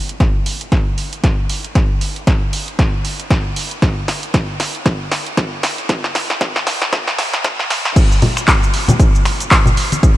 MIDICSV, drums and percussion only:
0, 0, Header, 1, 2, 480
1, 0, Start_track
1, 0, Tempo, 517241
1, 1628, Time_signature, 4, 2, 24, 8
1, 9439, End_track
2, 0, Start_track
2, 0, Title_t, "Drums"
2, 86, Note_on_c, 9, 42, 52
2, 179, Note_off_c, 9, 42, 0
2, 187, Note_on_c, 9, 36, 100
2, 187, Note_on_c, 9, 38, 47
2, 187, Note_on_c, 9, 42, 62
2, 280, Note_off_c, 9, 36, 0
2, 280, Note_off_c, 9, 38, 0
2, 280, Note_off_c, 9, 42, 0
2, 427, Note_on_c, 9, 46, 99
2, 520, Note_off_c, 9, 46, 0
2, 566, Note_on_c, 9, 42, 52
2, 659, Note_off_c, 9, 42, 0
2, 667, Note_on_c, 9, 36, 113
2, 667, Note_on_c, 9, 38, 50
2, 667, Note_on_c, 9, 42, 62
2, 760, Note_off_c, 9, 36, 0
2, 760, Note_off_c, 9, 38, 0
2, 760, Note_off_c, 9, 42, 0
2, 907, Note_on_c, 9, 46, 99
2, 1000, Note_off_c, 9, 46, 0
2, 1046, Note_on_c, 9, 42, 54
2, 1139, Note_off_c, 9, 42, 0
2, 1147, Note_on_c, 9, 36, 105
2, 1147, Note_on_c, 9, 38, 54
2, 1147, Note_on_c, 9, 42, 67
2, 1240, Note_off_c, 9, 36, 0
2, 1240, Note_off_c, 9, 38, 0
2, 1240, Note_off_c, 9, 42, 0
2, 1388, Note_on_c, 9, 46, 103
2, 1480, Note_off_c, 9, 46, 0
2, 1527, Note_on_c, 9, 42, 52
2, 1619, Note_off_c, 9, 42, 0
2, 1627, Note_on_c, 9, 36, 115
2, 1628, Note_on_c, 9, 38, 57
2, 1628, Note_on_c, 9, 42, 62
2, 1720, Note_off_c, 9, 36, 0
2, 1721, Note_off_c, 9, 38, 0
2, 1721, Note_off_c, 9, 42, 0
2, 1867, Note_on_c, 9, 46, 108
2, 1960, Note_off_c, 9, 46, 0
2, 2006, Note_on_c, 9, 42, 50
2, 2099, Note_off_c, 9, 42, 0
2, 2107, Note_on_c, 9, 36, 106
2, 2108, Note_on_c, 9, 38, 61
2, 2108, Note_on_c, 9, 42, 63
2, 2200, Note_off_c, 9, 36, 0
2, 2201, Note_off_c, 9, 38, 0
2, 2201, Note_off_c, 9, 42, 0
2, 2347, Note_on_c, 9, 46, 106
2, 2440, Note_off_c, 9, 46, 0
2, 2487, Note_on_c, 9, 42, 51
2, 2579, Note_off_c, 9, 42, 0
2, 2587, Note_on_c, 9, 36, 125
2, 2588, Note_on_c, 9, 38, 63
2, 2588, Note_on_c, 9, 42, 58
2, 2680, Note_off_c, 9, 36, 0
2, 2681, Note_off_c, 9, 38, 0
2, 2681, Note_off_c, 9, 42, 0
2, 2828, Note_on_c, 9, 46, 106
2, 2920, Note_off_c, 9, 46, 0
2, 2966, Note_on_c, 9, 42, 54
2, 3059, Note_off_c, 9, 42, 0
2, 3067, Note_on_c, 9, 36, 112
2, 3068, Note_on_c, 9, 38, 71
2, 3068, Note_on_c, 9, 42, 67
2, 3160, Note_off_c, 9, 36, 0
2, 3160, Note_off_c, 9, 38, 0
2, 3160, Note_off_c, 9, 42, 0
2, 3307, Note_on_c, 9, 46, 108
2, 3400, Note_off_c, 9, 46, 0
2, 3446, Note_on_c, 9, 42, 53
2, 3538, Note_off_c, 9, 42, 0
2, 3547, Note_on_c, 9, 36, 117
2, 3547, Note_on_c, 9, 38, 70
2, 3547, Note_on_c, 9, 42, 64
2, 3640, Note_off_c, 9, 36, 0
2, 3640, Note_off_c, 9, 38, 0
2, 3640, Note_off_c, 9, 42, 0
2, 3787, Note_on_c, 9, 38, 77
2, 3787, Note_on_c, 9, 46, 115
2, 3880, Note_off_c, 9, 38, 0
2, 3880, Note_off_c, 9, 46, 0
2, 3926, Note_on_c, 9, 42, 51
2, 4019, Note_off_c, 9, 42, 0
2, 4027, Note_on_c, 9, 36, 106
2, 4027, Note_on_c, 9, 38, 74
2, 4027, Note_on_c, 9, 42, 63
2, 4120, Note_off_c, 9, 36, 0
2, 4120, Note_off_c, 9, 38, 0
2, 4120, Note_off_c, 9, 42, 0
2, 4267, Note_on_c, 9, 38, 78
2, 4267, Note_on_c, 9, 46, 111
2, 4360, Note_off_c, 9, 38, 0
2, 4360, Note_off_c, 9, 46, 0
2, 4406, Note_on_c, 9, 42, 50
2, 4499, Note_off_c, 9, 42, 0
2, 4507, Note_on_c, 9, 36, 127
2, 4507, Note_on_c, 9, 38, 80
2, 4507, Note_on_c, 9, 42, 57
2, 4600, Note_off_c, 9, 36, 0
2, 4600, Note_off_c, 9, 38, 0
2, 4600, Note_off_c, 9, 42, 0
2, 4747, Note_on_c, 9, 38, 83
2, 4747, Note_on_c, 9, 46, 106
2, 4840, Note_off_c, 9, 38, 0
2, 4840, Note_off_c, 9, 46, 0
2, 4886, Note_on_c, 9, 42, 53
2, 4979, Note_off_c, 9, 42, 0
2, 4987, Note_on_c, 9, 36, 116
2, 4987, Note_on_c, 9, 38, 87
2, 4987, Note_on_c, 9, 42, 64
2, 5080, Note_off_c, 9, 36, 0
2, 5080, Note_off_c, 9, 38, 0
2, 5080, Note_off_c, 9, 42, 0
2, 5227, Note_on_c, 9, 38, 94
2, 5227, Note_on_c, 9, 46, 115
2, 5320, Note_off_c, 9, 38, 0
2, 5320, Note_off_c, 9, 46, 0
2, 5366, Note_on_c, 9, 42, 50
2, 5459, Note_off_c, 9, 42, 0
2, 5467, Note_on_c, 9, 36, 116
2, 5467, Note_on_c, 9, 38, 90
2, 5467, Note_on_c, 9, 42, 65
2, 5560, Note_off_c, 9, 36, 0
2, 5560, Note_off_c, 9, 38, 0
2, 5560, Note_off_c, 9, 42, 0
2, 5606, Note_on_c, 9, 38, 79
2, 5699, Note_off_c, 9, 38, 0
2, 5707, Note_on_c, 9, 38, 95
2, 5707, Note_on_c, 9, 46, 114
2, 5800, Note_off_c, 9, 38, 0
2, 5800, Note_off_c, 9, 46, 0
2, 5847, Note_on_c, 9, 38, 80
2, 5847, Note_on_c, 9, 42, 48
2, 5940, Note_off_c, 9, 38, 0
2, 5940, Note_off_c, 9, 42, 0
2, 5947, Note_on_c, 9, 36, 115
2, 5948, Note_on_c, 9, 38, 93
2, 5948, Note_on_c, 9, 42, 64
2, 6040, Note_off_c, 9, 36, 0
2, 6041, Note_off_c, 9, 38, 0
2, 6041, Note_off_c, 9, 42, 0
2, 6087, Note_on_c, 9, 38, 87
2, 6180, Note_off_c, 9, 38, 0
2, 6188, Note_on_c, 9, 38, 96
2, 6188, Note_on_c, 9, 46, 103
2, 6281, Note_off_c, 9, 38, 0
2, 6281, Note_off_c, 9, 46, 0
2, 6326, Note_on_c, 9, 38, 89
2, 6326, Note_on_c, 9, 42, 53
2, 6419, Note_off_c, 9, 38, 0
2, 6419, Note_off_c, 9, 42, 0
2, 6427, Note_on_c, 9, 36, 125
2, 6428, Note_on_c, 9, 38, 100
2, 6428, Note_on_c, 9, 42, 58
2, 6520, Note_off_c, 9, 36, 0
2, 6521, Note_off_c, 9, 38, 0
2, 6521, Note_off_c, 9, 42, 0
2, 6566, Note_on_c, 9, 38, 86
2, 6659, Note_off_c, 9, 38, 0
2, 6668, Note_on_c, 9, 38, 101
2, 6668, Note_on_c, 9, 46, 106
2, 6761, Note_off_c, 9, 38, 0
2, 6761, Note_off_c, 9, 46, 0
2, 6807, Note_on_c, 9, 38, 95
2, 6807, Note_on_c, 9, 42, 50
2, 6900, Note_off_c, 9, 38, 0
2, 6900, Note_off_c, 9, 42, 0
2, 6907, Note_on_c, 9, 36, 118
2, 6909, Note_on_c, 9, 38, 114
2, 6909, Note_on_c, 9, 42, 67
2, 7000, Note_off_c, 9, 36, 0
2, 7001, Note_off_c, 9, 38, 0
2, 7001, Note_off_c, 9, 42, 0
2, 7047, Note_on_c, 9, 38, 93
2, 7140, Note_off_c, 9, 38, 0
2, 7149, Note_on_c, 9, 38, 113
2, 7149, Note_on_c, 9, 46, 114
2, 7242, Note_off_c, 9, 38, 0
2, 7242, Note_off_c, 9, 46, 0
2, 7287, Note_on_c, 9, 38, 96
2, 7287, Note_on_c, 9, 42, 49
2, 7380, Note_off_c, 9, 38, 0
2, 7380, Note_off_c, 9, 42, 0
2, 7388, Note_on_c, 9, 36, 116
2, 7389, Note_on_c, 9, 42, 54
2, 7389, Note_on_c, 9, 49, 99
2, 7394, Note_on_c, 9, 82, 55
2, 7481, Note_off_c, 9, 36, 0
2, 7481, Note_off_c, 9, 42, 0
2, 7481, Note_off_c, 9, 49, 0
2, 7487, Note_off_c, 9, 82, 0
2, 7533, Note_on_c, 9, 82, 32
2, 7626, Note_off_c, 9, 82, 0
2, 7628, Note_on_c, 9, 46, 110
2, 7631, Note_on_c, 9, 64, 100
2, 7721, Note_off_c, 9, 46, 0
2, 7724, Note_off_c, 9, 64, 0
2, 7767, Note_on_c, 9, 26, 63
2, 7767, Note_on_c, 9, 42, 66
2, 7772, Note_on_c, 9, 82, 64
2, 7860, Note_off_c, 9, 26, 0
2, 7860, Note_off_c, 9, 42, 0
2, 7865, Note_off_c, 9, 82, 0
2, 7867, Note_on_c, 9, 39, 122
2, 7868, Note_on_c, 9, 36, 107
2, 7868, Note_on_c, 9, 42, 54
2, 7874, Note_on_c, 9, 82, 56
2, 7960, Note_off_c, 9, 39, 0
2, 7961, Note_off_c, 9, 36, 0
2, 7961, Note_off_c, 9, 42, 0
2, 7967, Note_off_c, 9, 82, 0
2, 8012, Note_on_c, 9, 82, 35
2, 8105, Note_off_c, 9, 82, 0
2, 8108, Note_on_c, 9, 46, 103
2, 8201, Note_off_c, 9, 46, 0
2, 8244, Note_on_c, 9, 63, 90
2, 8245, Note_on_c, 9, 64, 89
2, 8247, Note_on_c, 9, 42, 69
2, 8253, Note_on_c, 9, 82, 67
2, 8336, Note_off_c, 9, 63, 0
2, 8338, Note_off_c, 9, 64, 0
2, 8340, Note_off_c, 9, 42, 0
2, 8345, Note_off_c, 9, 82, 0
2, 8348, Note_on_c, 9, 36, 121
2, 8348, Note_on_c, 9, 42, 53
2, 8348, Note_on_c, 9, 62, 55
2, 8354, Note_on_c, 9, 82, 53
2, 8441, Note_off_c, 9, 36, 0
2, 8441, Note_off_c, 9, 42, 0
2, 8441, Note_off_c, 9, 62, 0
2, 8447, Note_off_c, 9, 82, 0
2, 8493, Note_on_c, 9, 82, 35
2, 8586, Note_off_c, 9, 82, 0
2, 8588, Note_on_c, 9, 26, 77
2, 8588, Note_on_c, 9, 46, 103
2, 8681, Note_off_c, 9, 26, 0
2, 8681, Note_off_c, 9, 46, 0
2, 8727, Note_on_c, 9, 42, 72
2, 8733, Note_on_c, 9, 82, 69
2, 8820, Note_off_c, 9, 42, 0
2, 8826, Note_off_c, 9, 82, 0
2, 8827, Note_on_c, 9, 39, 127
2, 8828, Note_on_c, 9, 36, 115
2, 8828, Note_on_c, 9, 42, 56
2, 8834, Note_on_c, 9, 82, 57
2, 8920, Note_off_c, 9, 39, 0
2, 8921, Note_off_c, 9, 36, 0
2, 8921, Note_off_c, 9, 42, 0
2, 8927, Note_off_c, 9, 82, 0
2, 8961, Note_on_c, 9, 64, 81
2, 8973, Note_on_c, 9, 82, 34
2, 9054, Note_off_c, 9, 64, 0
2, 9065, Note_off_c, 9, 82, 0
2, 9068, Note_on_c, 9, 46, 112
2, 9161, Note_off_c, 9, 46, 0
2, 9207, Note_on_c, 9, 42, 70
2, 9208, Note_on_c, 9, 63, 58
2, 9213, Note_on_c, 9, 82, 65
2, 9300, Note_off_c, 9, 42, 0
2, 9301, Note_off_c, 9, 63, 0
2, 9305, Note_off_c, 9, 82, 0
2, 9308, Note_on_c, 9, 36, 123
2, 9308, Note_on_c, 9, 42, 53
2, 9314, Note_on_c, 9, 82, 52
2, 9401, Note_off_c, 9, 36, 0
2, 9401, Note_off_c, 9, 42, 0
2, 9407, Note_off_c, 9, 82, 0
2, 9439, End_track
0, 0, End_of_file